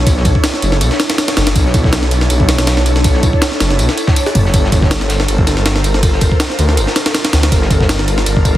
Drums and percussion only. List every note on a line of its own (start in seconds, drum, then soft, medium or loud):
0.07 kick loud
0.07 ride medium
0.07 tambourine medium
0.17 snare soft
0.25 kick medium
0.25 ride medium
0.25 tambourine medium
0.35 kick medium
0.44 snare loud
0.44 ride loud
0.44 tambourine medium
0.54 snare soft
0.54 closed hi-hat soft
0.62 ride medium
0.62 tambourine medium
0.72 snare soft
0.81 ride medium
0.81 tambourine medium
0.91 snare soft
0.91 snare medium
1.00 snare loud
1.00 ride medium
1.00 tambourine medium
1.10 snare loud
1.10 snare soft
1.10 ride medium
1.18 snare loud
1.18 ride medium
1.18 tambourine medium
1.28 snare loud
1.28 snare soft
1.28 ride medium
1.37 snare loud
1.37 ride medium
1.37 tambourine medium
1.47 snare loud
1.47 ride medium
1.56 kick loud
1.56 ride medium
1.56 tambourine medium
1.66 snare soft
1.74 kick loud
1.74 ride medium
1.74 tambourine medium
1.84 kick medium
1.84 snare soft
1.92 snare loud
1.92 ride loud
1.92 tambourine medium
2.03 snare soft
2.11 ride medium
2.11 tambourine medium
2.21 snare medium
2.30 ride medium
2.30 tambourine medium
2.40 kick medium
2.49 snare loud
2.49 ride medium
2.49 tambourine medium
2.58 snare loud
2.58 ride medium
2.67 snare loud
2.67 ride medium
2.67 tambourine medium
2.77 snare medium
2.86 ride medium
2.86 tambourine medium
2.96 snare medium
3.04 kick loud
3.04 ride medium
3.04 tambourine loud
3.14 snare soft
3.23 kick medium
3.23 ride medium
3.23 tambourine medium
3.33 kick medium
3.42 snare loud
3.42 ride loud
3.42 tambourine medium
3.51 snare soft
3.51 closed hi-hat soft
3.60 snare loud
3.60 ride medium
3.60 tambourine medium
3.70 snare soft
3.79 ride medium
3.79 tambourine medium
3.89 snare soft
3.89 snare medium
3.98 ride medium
3.98 tambourine medium
4.07 kick loud
4.07 snare loud
4.16 ride loud
4.16 tambourine medium
4.26 snare medium
4.35 kick loud
4.35 ride medium
4.35 tambourine medium
4.45 snare soft
4.54 kick loud
4.54 ride medium
4.54 tambourine medium
4.65 snare soft
4.72 kick medium
4.72 ride medium
4.72 tambourine medium
4.82 kick medium
4.82 snare soft
4.91 snare loud
4.91 ride medium
4.91 tambourine medium
5.01 snare medium
5.09 snare loud
5.09 ride medium
5.09 tambourine medium
5.20 snare medium
5.28 ride medium
5.28 tambourine medium
5.38 kick medium
5.47 snare medium
5.47 ride medium
5.47 tambourine medium
5.57 snare soft
5.65 snare loud
5.65 ride medium
5.65 tambourine loud
5.76 snare medium
5.84 ride medium
5.84 tambourine medium
5.94 snare soft
6.03 kick loud
6.03 ride medium
6.03 tambourine medium
6.13 snare soft
6.21 kick medium
6.21 ride medium
6.21 tambourine medium
6.31 kick medium
6.40 snare loud
6.40 ride medium
6.40 tambourine medium
6.50 snare soft
6.50 closed hi-hat soft
6.59 ride medium
6.59 tambourine medium
6.69 snare soft
6.77 ride medium
6.77 tambourine loud
6.87 snare medium
6.87 snare soft
6.96 snare loud
6.96 ride medium
6.96 tambourine medium
7.06 snare loud
7.06 snare soft
7.06 ride medium
7.14 snare loud
7.14 ride medium
7.14 tambourine medium
7.24 snare soft
7.24 snare loud
7.24 ride medium
7.33 snare loud
7.33 ride medium
7.33 tambourine medium
7.43 snare loud
7.43 ride medium
7.52 kick loud
7.52 ride medium
7.52 tambourine medium
7.62 snare medium
7.71 kick medium
7.71 ride medium
7.71 tambourine medium
7.81 kick medium
7.81 snare medium
7.89 snare loud
7.89 ride medium
7.89 tambourine medium
7.99 snare medium
8.08 ride medium
8.08 tambourine medium
8.18 snare medium
8.26 ride medium
8.26 tambourine loud
8.36 kick medium
8.45 kick medium
8.45 ride medium
8.45 tambourine medium